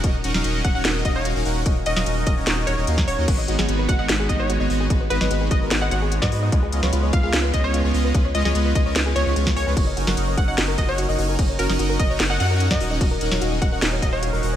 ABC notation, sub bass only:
X:1
M:4/4
L:1/16
Q:1/4=148
K:G#dor
V:1 name="Sub bass" clef=bass
D,,,2 D,,, D,,, D,,,2 D,,, D,,, D,,,2 D,,,3 D,,, D,,,2 | D,,,2 D,,, D,,, D,,,2 D,,, D,,, D,,,2 D,,, D,,, D,,2 D,,, D,, | G,,,2 G,,, G,,, G,,,2 G,,, G,,, G,,,2 G,,,3 G,,, G,,,2 | G,,,2 G,,, G,,, G,,,2 G,,, G,,, G,,,2 G,,,3 G,, G,,2 |
C,,2 C,, C,, C,,2 C,, C,, C,,2 C,,3 C,, C,,2 | C,,2 C,, C,, C,,2 C,, C,, C,,2 C,, C,, C,,2 C,, C,, | F,,,2 F,,, F,,, F,,,2 F,,, F,,, F,,,2 F,,,3 F,,, F,,,2 | F,,,2 F,,, F,,, F,,,2 F,,, F,,, F,,,2 F,,3 F,, D,,,2 |
D,,,2 D,,, D,,, D,,,2 D,,, D,,, D,,,2 D,,,3 D,,, D,,,2 |]